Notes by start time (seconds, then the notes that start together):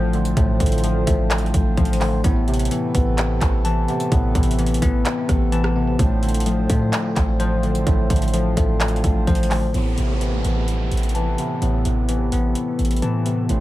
Already playing: A1 A2 D3 F3 A3 C4 C5
0.13 D3 A3, closed hi-hat
0.25 closed hi-hat
0.37 A1 A2 A3, kick, closed hi-hat
0.60 A1 D3, kick, closed hi-hat
0.66 closed hi-hat
0.72 closed hi-hat
0.78 closed hi-hat
0.83 F3 A3, closed hi-hat
1.07 A1 A3, kick, closed hi-hat
1.31 clap, closed hi-hat
1.38 closed hi-hat
1.46 closed hi-hat
1.54 A1, kick, closed hi-hat
1.77 A1 F3 C5, kick, closed hi-hat
1.85 closed hi-hat
1.93 closed hi-hat
2.00 D3 A3, clap, open hi-hat
2.24 A1 A2 C3 A3 B3, kick, closed hi-hat
2.48 C3, closed hi-hat
2.54 closed hi-hat
2.59 closed hi-hat
2.65 closed hi-hat
2.71 E3 B3, closed hi-hat
2.95 A1 B3, kick, closed hi-hat
3.18 clap, closed hi-hat
3.41 A1, kick, clap, closed hi-hat
3.65 E3 A5, closed hi-hat
3.88 C3 B3, closed hi-hat
4.00 closed hi-hat
4.12 A1 A2 B3, kick, closed hi-hat
4.35 A1 C3, kick, closed hi-hat
4.43 closed hi-hat
4.51 closed hi-hat
4.59 E3 B3, closed hi-hat
4.67 closed hi-hat
4.74 closed hi-hat
4.82 A1 B3, kick, closed hi-hat
5.05 clap, closed hi-hat
5.29 A1, kick, cross-stick, closed hi-hat
5.52 E3 A5, closed hi-hat
5.64 cross-stick
5.76 C3 B3
5.99 A1 A2 D3 F3 A3 C4, kick, closed hi-hat
6.22 D3, closed hi-hat
6.29 closed hi-hat
6.34 closed hi-hat
6.40 closed hi-hat
6.46 F3 A3, closed hi-hat
6.70 A2 A3, kick, closed hi-hat
6.93 clap, closed hi-hat
7.16 A1, kick, clap, closed hi-hat
7.40 F3 C5, closed hi-hat
7.63 D3 A3, closed hi-hat
7.75 closed hi-hat
7.87 A1 A2 A3, kick, closed hi-hat
8.10 A1 D3, kick, closed hi-hat
8.16 closed hi-hat
8.22 closed hi-hat
8.28 closed hi-hat
8.33 F3 A3, closed hi-hat
8.57 A1 A3, kick, closed hi-hat
8.80 clap, closed hi-hat
8.88 closed hi-hat
8.96 closed hi-hat
9.04 A1, kick, closed hi-hat
9.27 A1 F3 C5, kick, closed hi-hat
9.35 closed hi-hat
9.43 closed hi-hat
9.50 D3 A3, clap, open hi-hat
9.74 A1 A2 C3 A3 B3, closed hi-hat, downlifter
9.98 A1 C3, closed hi-hat
10.21 E3 B3, closed hi-hat
10.45 A1 B3, closed hi-hat
10.68 closed hi-hat
10.91 A1, closed hi-hat
10.97 closed hi-hat
11.03 closed hi-hat
11.09 closed hi-hat
11.15 E3 A5, closed hi-hat
11.38 C3 B3, closed hi-hat
11.62 A1 A2 B3, closed hi-hat
11.85 A1 C3, closed hi-hat
12.09 E3 B3, closed hi-hat
12.32 A1 B3, closed hi-hat
12.55 closed hi-hat
12.79 A1, closed hi-hat
12.85 closed hi-hat
12.91 closed hi-hat
12.96 closed hi-hat
13.02 A2 E3 A5, closed hi-hat
13.26 C3 B3, closed hi-hat
13.49 A1 A2 D3 F3 A3 C4, closed hi-hat